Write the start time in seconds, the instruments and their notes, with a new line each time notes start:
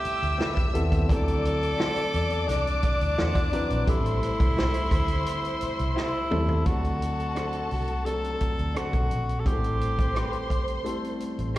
Already playing: grand piano G3 A3 C4 E4 A4, tenor saxophone G4, string section E5 E6
0.05 muted fingered electric bass stroke, closed hi-hat
0.23 fingered electric bass D2, closed hi-hat
0.38 clean electric guitar C4 G4 B4, snare
0.57 kick, closed hi-hat
0.73 fingered electric bass D#2, grand piano G3 B3 C4 E4 A4, closed hi-hat
0.92 kick, closed hi-hat
1.08 fingered electric bass D2, grand piano F#3 C4 D4 E4 A4, tenor saxophone A4, string section D5 D6, kick, closed hi-hat
1.28 closed hi-hat
1.45 closed hi-hat
1.63 closed hi-hat
1.78 clean electric guitar E4 F#4 C5, snare
1.96 closed hi-hat
2.14 fingered electric bass E2, closed hi-hat
2.30 closed hi-hat
2.48 fingered electric bass C2, tenor saxophone D4, snare, closed hi-hat
2.67 closed hi-hat
2.83 kick, closed hi-hat
3.01 fingered electric bass D2, closed hi-hat
3.18 fingered electric bass E2, clean electric guitar E4 F#4 C5, snare
3.35 kick, closed hi-hat
3.52 grand piano F#3 C4 D4 E4 B4, closed hi-hat
3.70 fingered electric bass A#1, closed hi-hat
3.87 fingered electric bass A1, grand piano G3 A3 C4 E4 A4, tenor saxophone E4, string section C5 C6, kick, closed hi-hat
4.06 closed hi-hat
4.23 muted fingered electric bass stroke, closed hi-hat
4.40 fingered electric bass C2, kick, closed hi-hat
4.57 clean electric guitar E4 G4 C5, snare
4.74 closed hi-hat
4.91 fingered electric bass D2, kick, closed hi-hat
5.08 closed hi-hat
5.26 closed hi-hat
5.45 closed hi-hat
5.61 muted fingered electric bass stroke, closed hi-hat
5.79 fingered electric bass C2, closed hi-hat
5.96 clean electric guitar E4 G4 C5, tenor saxophone E4, snare
6.31 fingered electric bass D#2, grand piano G3 A3 C4 E4 A4, mid tom
6.48 floor tom
6.65 fingered electric bass D2, grand piano F#3 A3 C4 D4 A4, tenor saxophone F#4, string section A4 A5, kick, closed hi-hat
6.84 closed hi-hat
7.02 closed hi-hat
7.20 closed hi-hat
7.35 clean electric guitar D4 F#4 C5, cross-stick, closed hi-hat
7.53 closed hi-hat
7.71 fingered electric bass C2, tenor saxophone F#4, open hi-hat
7.88 closed hi-hat
8.04 grand piano F3 A3 C4 D4 A4, tenor saxophone A4, cross-stick, closed hi-hat
8.11 grand piano F#3
8.24 closed hi-hat
8.40 muted fingered electric bass stroke, kick, closed hi-hat
8.59 fingered electric bass D2, closed hi-hat
8.75 clean electric guitar D4 F#4 C5, tenor saxophone F#4, cross-stick, closed hi-hat
8.93 fingered electric bass B1, kick, closed hi-hat
9.11 fingered electric bass A#1, closed hi-hat
9.29 closed hi-hat
9.39 tenor saxophone A4
9.45 fingered electric bass A1, grand piano G3 A3 C4 E4 G#4, tenor saxophone G4, string section C5 C6, kick, closed hi-hat
9.53 grand piano A4
9.64 closed hi-hat
9.81 closed hi-hat
9.99 kick, closed hi-hat
10.15 clean electric guitar C4 G4 B4, cross-stick, closed hi-hat
10.33 closed hi-hat
10.50 kick, closed hi-hat
10.68 closed hi-hat
10.84 fingered electric bass G1, grand piano G3 A3 C4 E4 A4, closed hi-hat
11.04 closed hi-hat
11.20 closed hi-hat
11.39 fingered electric bass A1, closed hi-hat
11.55 clean electric guitar C4